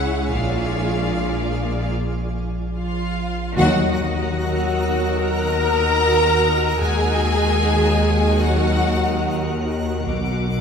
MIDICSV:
0, 0, Header, 1, 12, 480
1, 0, Start_track
1, 0, Tempo, 810811
1, 198, Time_signature, 4, 2, 24, 8
1, 6279, End_track
2, 0, Start_track
2, 0, Title_t, "Violin section"
2, 0, Program_c, 0, 48
2, 2117, Note_on_c, 0, 94, 31
2, 2124, Note_on_c, 0, 87, 32
2, 2597, Note_on_c, 0, 88, 34
2, 4734, Note_off_c, 0, 94, 0
2, 4923, Note_off_c, 0, 88, 0
2, 4923, Note_on_c, 0, 89, 34
2, 5693, Note_off_c, 0, 89, 0
2, 5697, Note_off_c, 0, 87, 0
2, 5957, Note_on_c, 0, 86, 42
2, 6279, Note_off_c, 0, 86, 0
2, 6279, End_track
3, 0, Start_track
3, 0, Title_t, "Violin section"
3, 0, Program_c, 1, 48
3, 0, Note_on_c, 1, 78, 78
3, 193, Note_on_c, 1, 77, 52
3, 199, Note_off_c, 1, 78, 0
3, 1136, Note_off_c, 1, 77, 0
3, 1639, Note_on_c, 1, 77, 52
3, 2095, Note_off_c, 1, 77, 0
3, 2114, Note_on_c, 1, 78, 74
3, 3052, Note_off_c, 1, 78, 0
3, 3079, Note_on_c, 1, 82, 86
3, 4029, Note_on_c, 1, 80, 83
3, 4038, Note_off_c, 1, 82, 0
3, 4974, Note_off_c, 1, 80, 0
3, 4997, Note_on_c, 1, 78, 71
3, 5477, Note_off_c, 1, 78, 0
3, 6279, End_track
4, 0, Start_track
4, 0, Title_t, "Synth texture"
4, 0, Program_c, 2, 99
4, 0, Note_on_c, 2, 64, 41
4, 0, Note_on_c, 2, 68, 45
4, 0, Note_on_c, 2, 73, 42
4, 196, Note_off_c, 2, 64, 0
4, 197, Note_off_c, 2, 73, 0
4, 198, Note_on_c, 2, 65, 42
4, 198, Note_on_c, 2, 74, 39
4, 1157, Note_off_c, 2, 68, 0
4, 1158, Note_off_c, 2, 65, 0
4, 1158, Note_off_c, 2, 74, 0
4, 2115, Note_on_c, 2, 66, 75
4, 2115, Note_on_c, 2, 78, 75
4, 2116, Note_on_c, 2, 70, 72
4, 4012, Note_off_c, 2, 78, 0
4, 4013, Note_off_c, 2, 66, 0
4, 4013, Note_off_c, 2, 70, 0
4, 4038, Note_on_c, 2, 78, 52
4, 4039, Note_on_c, 2, 66, 49
4, 4041, Note_on_c, 2, 70, 51
4, 5934, Note_off_c, 2, 78, 0
4, 5935, Note_off_c, 2, 66, 0
4, 5936, Note_off_c, 2, 70, 0
4, 5961, Note_on_c, 2, 66, 51
4, 5963, Note_on_c, 2, 74, 54
4, 5963, Note_on_c, 2, 78, 55
4, 6279, Note_off_c, 2, 66, 0
4, 6279, Note_off_c, 2, 74, 0
4, 6279, Note_off_c, 2, 78, 0
4, 6279, End_track
5, 0, Start_track
5, 0, Title_t, "Vibraphone"
5, 0, Program_c, 3, 11
5, 0, Control_c, 3, 64, 127
5, 0, Note_on_c, 3, 88, 31
5, 208, Control_c, 3, 64, 0
5, 309, Control_c, 3, 64, 127
5, 1137, Note_off_c, 3, 88, 0
5, 2129, Control_c, 3, 64, 0
5, 2230, Control_c, 3, 64, 127
5, 2835, Note_on_c, 3, 59, 32
5, 2840, Note_on_c, 3, 70, 47
5, 4253, Note_off_c, 3, 59, 0
5, 4255, Note_off_c, 3, 70, 0
5, 5968, Control_c, 3, 64, 0
5, 6070, Control_c, 3, 64, 127
5, 6279, End_track
6, 0, Start_track
6, 0, Title_t, "Violin section"
6, 0, Program_c, 4, 48
6, 0, Note_on_c, 4, 68, 55
6, 0, Note_on_c, 4, 73, 54
6, 177, Note_off_c, 4, 68, 0
6, 178, Note_off_c, 4, 73, 0
6, 200, Note_on_c, 4, 68, 39
6, 200, Note_on_c, 4, 74, 42
6, 1139, Note_off_c, 4, 74, 0
6, 1140, Note_off_c, 4, 68, 0
6, 1638, Note_on_c, 4, 65, 47
6, 2094, Note_off_c, 4, 65, 0
6, 2119, Note_on_c, 4, 66, 68
6, 3055, Note_off_c, 4, 66, 0
6, 3074, Note_on_c, 4, 70, 67
6, 4036, Note_off_c, 4, 70, 0
6, 4039, Note_on_c, 4, 68, 69
6, 4998, Note_off_c, 4, 68, 0
6, 4998, Note_on_c, 4, 66, 57
6, 5478, Note_off_c, 4, 66, 0
6, 6279, End_track
7, 0, Start_track
7, 0, Title_t, "Viola section"
7, 0, Program_c, 5, 48
7, 0, Note_on_c, 5, 56, 55
7, 0, Note_on_c, 5, 64, 48
7, 171, Note_off_c, 5, 56, 0
7, 172, Note_off_c, 5, 64, 0
7, 196, Note_on_c, 5, 58, 39
7, 196, Note_on_c, 5, 65, 39
7, 1138, Note_off_c, 5, 58, 0
7, 1138, Note_off_c, 5, 65, 0
7, 1637, Note_on_c, 5, 65, 44
7, 2093, Note_off_c, 5, 65, 0
7, 2114, Note_on_c, 5, 66, 78
7, 3052, Note_off_c, 5, 66, 0
7, 3072, Note_on_c, 5, 70, 63
7, 4033, Note_on_c, 5, 68, 70
7, 4035, Note_off_c, 5, 70, 0
7, 4976, Note_off_c, 5, 68, 0
7, 4991, Note_on_c, 5, 66, 58
7, 5474, Note_off_c, 5, 66, 0
7, 6279, End_track
8, 0, Start_track
8, 0, Title_t, "French horn section"
8, 0, Program_c, 6, 60
8, 0, Note_on_c, 6, 56, 63
8, 0, Note_on_c, 6, 64, 63
8, 171, Note_off_c, 6, 64, 0
8, 195, Note_on_c, 6, 62, 53
8, 1133, Note_off_c, 6, 56, 0
8, 1133, Note_off_c, 6, 62, 0
8, 1631, Note_on_c, 6, 53, 45
8, 2091, Note_off_c, 6, 53, 0
8, 2110, Note_on_c, 6, 54, 76
8, 3050, Note_off_c, 6, 54, 0
8, 3076, Note_on_c, 6, 70, 72
8, 4032, Note_on_c, 6, 56, 71
8, 4037, Note_off_c, 6, 70, 0
8, 4976, Note_off_c, 6, 56, 0
8, 4993, Note_on_c, 6, 54, 58
8, 5475, Note_off_c, 6, 54, 0
8, 6279, End_track
9, 0, Start_track
9, 0, Title_t, "Timpani"
9, 0, Program_c, 7, 47
9, 2117, Note_on_c, 7, 51, 77
9, 2814, Note_off_c, 7, 51, 0
9, 6279, End_track
10, 0, Start_track
10, 0, Title_t, "Cello section"
10, 0, Program_c, 8, 48
10, 0, Note_on_c, 8, 49, 55
10, 174, Note_off_c, 8, 49, 0
10, 201, Note_on_c, 8, 46, 41
10, 1140, Note_off_c, 8, 46, 0
10, 2116, Note_on_c, 8, 51, 71
10, 4013, Note_off_c, 8, 51, 0
10, 4033, Note_on_c, 8, 51, 54
10, 5932, Note_off_c, 8, 51, 0
10, 5958, Note_on_c, 8, 47, 58
10, 6279, Note_off_c, 8, 47, 0
10, 6279, End_track
11, 0, Start_track
11, 0, Title_t, "Double bass section"
11, 0, Program_c, 10, 48
11, 0, Note_on_c, 10, 37, 58
11, 175, Note_off_c, 10, 37, 0
11, 199, Note_on_c, 10, 34, 49
11, 1139, Note_off_c, 10, 34, 0
11, 2120, Note_on_c, 10, 39, 74
11, 4015, Note_off_c, 10, 39, 0
11, 4037, Note_on_c, 10, 39, 60
11, 5934, Note_off_c, 10, 39, 0
11, 5960, Note_on_c, 10, 35, 67
11, 6279, Note_off_c, 10, 35, 0
11, 6279, End_track
12, 0, Start_track
12, 0, Title_t, "Sub bass"
12, 0, Program_c, 11, 38
12, 0, Note_on_c, 11, 37, 74
12, 198, Note_on_c, 11, 34, 68
12, 207, Note_off_c, 11, 37, 0
12, 2107, Note_off_c, 11, 34, 0
12, 2111, Note_on_c, 11, 39, 72
12, 4011, Note_off_c, 11, 39, 0
12, 4033, Note_on_c, 11, 39, 78
12, 5952, Note_on_c, 11, 35, 84
12, 5960, Note_off_c, 11, 39, 0
12, 6279, Note_off_c, 11, 35, 0
12, 6279, End_track
0, 0, End_of_file